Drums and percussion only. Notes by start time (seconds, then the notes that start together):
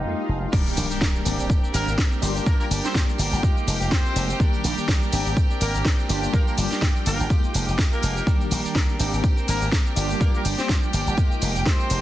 0.53 kick, crash, tambourine, shaker
0.67 tambourine, shaker
0.77 open hi-hat, tambourine, shaker
0.91 tambourine, shaker
1.01 kick, snare, tambourine, shaker
1.15 shaker
1.25 open hi-hat, tambourine, shaker
1.39 tambourine, shaker
1.49 kick, tambourine, shaker
1.64 shaker
1.74 open hi-hat, tambourine, shaker
1.88 tambourine, shaker
1.98 kick, snare, tambourine, shaker
2.11 tambourine, shaker
2.22 open hi-hat, tambourine, shaker
2.36 tambourine, shaker
2.46 kick, tambourine, shaker
2.60 tambourine, shaker
2.71 open hi-hat, tambourine, shaker
2.84 snare, tambourine, shaker
2.95 kick, snare, tambourine, shaker
3.09 shaker
3.18 open hi-hat, tambourine, shaker
3.33 tambourine, shaker
3.43 kick, tambourine, shaker
3.58 shaker
3.68 open hi-hat, tambourine, shaker
3.81 tambourine, shaker
3.92 kick, snare, tambourine, shaker
4.05 tambourine, shaker
4.16 open hi-hat, tambourine, shaker
4.30 tambourine, shaker
4.40 kick, tambourine, shaker
4.53 tambourine, shaker
4.64 open hi-hat, tambourine, shaker
4.78 tambourine, shaker
4.88 kick, snare, tambourine, shaker
5.02 shaker
5.12 open hi-hat, tambourine, shaker
5.26 tambourine, shaker
5.37 kick, tambourine, shaker
5.51 shaker
5.61 open hi-hat, tambourine, shaker
5.75 tambourine, shaker
5.85 kick, snare, tambourine, shaker
5.99 tambourine, shaker
6.09 open hi-hat, tambourine, shaker
6.23 tambourine, shaker
6.34 kick, tambourine, shaker
6.47 tambourine, shaker
6.58 open hi-hat, tambourine, shaker
6.70 snare, tambourine, shaker
6.81 kick, snare, tambourine, shaker
6.96 shaker
7.06 open hi-hat, tambourine, shaker
7.19 tambourine, shaker
7.30 kick, tambourine, shaker
7.44 shaker
7.54 open hi-hat, tambourine, shaker
7.68 tambourine, shaker
7.79 kick, snare, tambourine, shaker
7.92 tambourine, shaker
8.03 open hi-hat, tambourine, shaker
8.16 tambourine, shaker
8.27 kick, tambourine, shaker
8.40 tambourine, shaker
8.51 open hi-hat, tambourine, shaker
8.65 tambourine, shaker
8.75 kick, snare, tambourine, shaker
8.89 shaker
9.00 open hi-hat, tambourine, shaker
9.13 tambourine, shaker
9.24 kick, tambourine, shaker
9.38 shaker
9.48 open hi-hat, tambourine, shaker
9.62 tambourine, shaker
9.72 kick, snare, tambourine, shaker
9.86 tambourine, shaker
9.96 open hi-hat, tambourine, shaker
10.09 tambourine, shaker
10.21 kick, tambourine, shaker
10.34 tambourine, shaker
10.45 open hi-hat, tambourine, shaker
10.59 snare, tambourine, shaker
10.69 kick, snare, tambourine, shaker
10.83 shaker
10.93 open hi-hat, tambourine, shaker
11.07 tambourine, shaker
11.17 kick, tambourine, shaker
11.32 shaker
11.42 open hi-hat, tambourine, shaker
11.56 tambourine, shaker
11.66 kick, snare, tambourine, shaker
11.79 tambourine, shaker
11.90 open hi-hat, tambourine, shaker